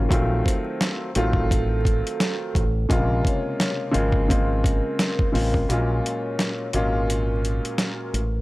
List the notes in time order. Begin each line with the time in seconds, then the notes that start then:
0.09 A#1 D#3 F#3 A3 C4 F4, kick, closed hi-hat
0.45 C5, kick, closed hi-hat
0.81 snare, closed hi-hat
1.15 A1 D#3 F#3 A3 C4 F4 A4, closed hi-hat
1.33 kick
1.51 A4, kick, closed hi-hat
1.84 A4, kick, closed hi-hat
2.07 closed hi-hat
2.20 snare, closed hi-hat
2.55 A1, kick, closed hi-hat
2.89 A#1 C3 C#3 G#3 A#3 F4, kick, closed hi-hat
3.25 C#5, kick, closed hi-hat
3.60 snare, closed hi-hat
3.92 G#1 C#3 G#3 A#3 C4 F4 A#4, closed hi-hat
4.12 kick
4.28 C#3 G#3 A#3 C4 F4, kick, closed hi-hat
4.64 A#4, kick, closed hi-hat
4.99 snare, closed hi-hat
5.19 kick
5.32 A1 C#3 G#3 A#3 C4 F4, open hi-hat
5.54 kick
5.69 A#1 A#2 F#3 G#3 A#3 C#4 F4, closed hi-hat
6.05 C#5, closed hi-hat
6.39 snare, closed hi-hat
6.73 G#1 A#2 F#3 G#3 A#3 C#4 F4 A#4, closed hi-hat
7.08 A#4, closed hi-hat
7.43 A#4, closed hi-hat
7.65 closed hi-hat
7.78 snare, closed hi-hat
8.13 A1, closed hi-hat